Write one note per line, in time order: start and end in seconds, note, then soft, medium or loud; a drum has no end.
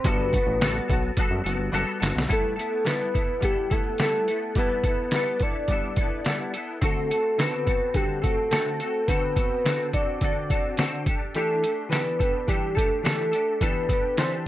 0.04 0.38 G1 loud
0.04 0.33 G3 medium
0.04 0.33 B3 medium
0.04 0.33 F#4 medium
0.04 0.32 A4 medium
0.04 1.19 B4 medium
0.04 kick loud
0.04 closed hi-hat loud
0.33 0.61 B3 soft
0.33 0.61 F#4 soft
0.33 0.61 A4 soft
0.33 kick medium
0.33 closed hi-hat medium
0.47 0.81 A1 medium
0.61 0.89 G3 medium
0.61 0.89 B3 medium
0.61 0.89 F#4 medium
0.61 0.87 A4 medium
0.61 snare loud
0.61 closed hi-hat medium
0.88 1.12 B1 medium
0.88 1.17 B3 soft
0.88 1.18 F#4 medium
0.88 1.17 A4 medium
0.88 kick medium
0.88 closed hi-hat medium
1.17 1.45 G3 medium
1.17 1.46 B3 medium
1.17 1.45 F#4 medium
1.17 1.43 A4 medium
1.17 kick medium
1.17 closed hi-hat medium
1.31 1.42 F#2 loud
1.44 1.57 F#1 medium
1.44 1.72 B3 soft
1.44 1.73 F#4 medium
1.44 1.73 A4 medium
1.44 closed hi-hat medium
1.58 1.70 G1 medium
1.72 1.85 F#1 loud
1.72 2.01 G3 medium
1.72 2.02 B3 medium
1.72 2.00 F#4 medium
1.72 1.99 A4 medium
1.72 closed hi-hat medium
2.00 2.13 G1 medium
2.00 2.28 B3 soft
2.00 2.29 F#4 medium
2.00 2.28 A4 medium
2.00 snare medium
2.00 closed hi-hat medium
2.16 2.27 B1 medium
2.16 snare medium
2.27 2.57 G3 medium
2.27 2.58 B3 medium
2.27 2.57 E4 medium
2.27 2.55 A4 medium
2.27 kick medium
2.27 closed hi-hat medium
2.32 2.57 A4 medium
2.56 2.84 B3 soft
2.56 2.86 E4 soft
2.56 2.85 A4 soft
2.56 2.88 A4 medium
2.56 closed hi-hat medium
2.85 3.14 G3 medium
2.85 3.14 B3 medium
2.85 3.14 E4 medium
2.85 3.13 A4 medium
2.85 3.43 B4 medium
2.85 snare medium
2.85 closed hi-hat medium
3.14 3.41 B3 soft
3.14 3.43 E4 soft
3.14 3.43 A4 soft
3.14 kick medium
3.14 closed hi-hat medium
3.41 3.70 G3 soft
3.41 3.71 B3 soft
3.41 3.71 E4 medium
3.41 3.74 G4 medium
3.41 3.69 A4 medium
3.41 kick medium
3.41 closed hi-hat medium
3.70 3.99 B3 soft
3.70 4.00 E4 soft
3.70 3.99 A4 soft
3.70 4.00 A4 medium
3.70 kick medium
3.70 closed hi-hat medium
3.98 4.28 G3 medium
3.98 4.28 B3 medium
3.98 4.28 E4 medium
3.98 4.27 A4 medium
3.98 4.59 A4 medium
3.98 snare medium
3.98 closed hi-hat medium
4.28 4.56 B3 soft
4.28 4.57 E4 soft
4.28 4.56 A4 soft
4.28 closed hi-hat medium
4.55 4.84 G3 medium
4.55 4.85 B3 medium
4.55 4.85 E4 medium
4.55 4.83 A4 medium
4.55 4.85 B4 medium
4.55 kick medium
4.55 closed hi-hat medium
4.84 5.14 B3 soft
4.84 5.14 E4 soft
4.84 5.13 A4 soft
4.84 5.44 B4 loud
4.84 kick medium
4.84 closed hi-hat medium
5.11 5.41 G3 medium
5.11 5.42 B3 medium
5.11 snare medium
5.11 closed hi-hat medium
5.15 5.42 E4 medium
5.15 5.41 A4 medium
5.40 5.70 A4 soft
5.40 6.55 D5 loud
5.40 kick medium
5.40 closed hi-hat medium
5.44 5.69 B3 soft
5.44 5.70 E4 soft
5.68 5.97 G3 medium
5.68 5.98 B3 soft
5.68 5.98 E4 soft
5.68 kick medium
5.68 closed hi-hat medium
5.72 5.97 A4 medium
5.96 6.26 E4 soft
5.96 6.26 A4 soft
5.96 kick medium
5.96 closed hi-hat medium
6.02 6.26 B3 soft
6.25 6.54 G3 medium
6.25 6.55 B3 medium
6.25 6.55 E4 medium
6.25 6.52 A4 medium
6.25 snare medium
6.25 closed hi-hat medium
6.54 6.81 B3 soft
6.54 6.82 E4 soft
6.54 6.82 A4 medium
6.54 closed hi-hat medium
6.81 7.10 D3 medium
6.81 7.10 C4 medium
6.81 7.11 F#4 medium
6.81 7.09 A4 medium
6.81 7.42 A4 medium
6.81 kick medium
6.81 closed hi-hat medium
7.11 7.37 C4 soft
7.11 7.39 F#4 soft
7.11 7.39 A4 soft
7.11 closed hi-hat medium
7.38 7.67 D3 medium
7.38 7.67 C4 medium
7.38 7.67 F#4 medium
7.38 7.65 A4 medium
7.38 7.97 B4 medium
7.38 snare medium
7.38 closed hi-hat medium
7.67 7.94 C4 soft
7.67 7.95 F#4 soft
7.67 7.95 A4 medium
7.67 kick medium
7.67 closed hi-hat medium
7.94 8.23 D3 medium
7.94 8.24 C4 soft
7.94 8.22 F#4 medium
7.94 8.24 G4 medium
7.94 8.21 A4 medium
7.94 kick medium
7.94 closed hi-hat medium
8.22 8.50 C4 soft
8.22 8.51 F#4 soft
8.22 8.51 A4 medium
8.22 8.50 A4 medium
8.22 kick medium
8.22 closed hi-hat medium
8.51 8.80 D3 medium
8.51 8.80 C4 medium
8.51 8.80 F#4 medium
8.51 9.09 A4 medium
8.51 8.79 A4 medium
8.51 snare medium
8.51 closed hi-hat medium
8.80 9.08 C4 soft
8.80 9.09 F#4 soft
8.80 9.08 A4 soft
8.80 closed hi-hat medium
9.08 9.36 D3 medium
9.08 9.37 C4 medium
9.08 9.37 F#4 medium
9.08 9.35 A4 medium
9.08 9.36 B4 medium
9.08 kick medium
9.08 closed hi-hat medium
9.36 9.64 C4 soft
9.36 9.66 F#4 soft
9.36 9.65 A4 soft
9.36 9.89 B4 loud
9.36 kick medium
9.36 closed hi-hat medium
9.65 9.93 D3 medium
9.65 9.94 C4 medium
9.65 9.94 F#4 medium
9.65 9.92 A4 medium
9.65 snare medium
9.65 closed hi-hat medium
9.93 10.21 C4 soft
9.93 10.23 F#4 soft
9.93 10.21 A4 soft
9.93 11.03 D5 loud
9.93 kick medium
9.93 closed hi-hat medium
10.21 10.49 D3 soft
10.21 10.50 C4 soft
10.21 10.51 F#4 medium
10.21 10.49 A4 medium
10.21 kick medium
10.21 closed hi-hat medium
10.50 10.78 C4 soft
10.50 10.78 F#4 soft
10.50 10.78 A4 soft
10.50 kick medium
10.50 closed hi-hat medium
10.77 11.06 D3 medium
10.77 11.07 C4 medium
10.77 11.07 F#4 medium
10.77 11.06 A4 medium
10.77 snare medium
10.77 closed hi-hat medium
11.06 11.35 G4 soft
11.06 11.35 A4 medium
11.06 kick medium
11.06 closed hi-hat medium
11.10 11.35 D4 soft
11.35 11.63 E3 medium
11.35 11.64 D4 medium
11.35 11.63 G4 medium
11.35 11.88 A4 medium
11.35 11.61 A4 medium
11.35 closed hi-hat medium
11.62 11.89 D4 soft
11.62 11.91 G4 soft
11.62 11.91 A4 soft
11.62 closed hi-hat medium
11.89 12.18 E3 medium
11.89 12.19 D4 medium
11.89 12.20 G4 medium
11.89 12.18 A4 medium
11.89 12.50 B4 medium
11.89 snare medium
11.89 closed hi-hat medium
12.19 12.47 D4 soft
12.19 12.48 G4 soft
12.19 12.48 A4 soft
12.19 kick medium
12.19 closed hi-hat medium
12.47 12.76 E3 soft
12.47 12.76 D4 soft
12.47 12.77 G4 medium
12.47 12.75 G4 soft
12.47 12.74 A4 soft
12.47 kick medium
12.47 closed hi-hat medium
12.75 13.03 D4 soft
12.75 13.04 G4 soft
12.75 13.04 A4 soft
12.75 13.04 A4 medium
12.75 kick medium
12.75 closed hi-hat medium
13.03 13.32 E3 medium
13.03 13.33 D4 medium
13.03 13.33 G4 medium
13.03 13.64 A4 medium
13.03 13.30 A4 medium
13.03 snare medium
13.03 closed hi-hat medium
13.32 13.61 D4 soft
13.32 13.61 G4 soft
13.32 13.60 A4 soft
13.32 closed hi-hat medium
13.61 13.89 E3 medium
13.61 13.90 D4 medium
13.61 13.90 G4 medium
13.61 13.88 A4 medium
13.61 13.89 B4 medium
13.61 kick medium
13.61 closed hi-hat medium
13.89 14.17 D4 soft
13.89 14.18 G4 soft
13.89 14.17 A4 soft
13.89 14.16 B4 medium
13.89 kick medium
13.89 closed hi-hat medium
14.17 14.46 E3 medium
14.17 14.46 D4 medium
14.17 14.47 G4 medium
14.17 14.45 A4 medium
14.17 14.31 C5 medium
14.17 snare medium
14.17 closed hi-hat medium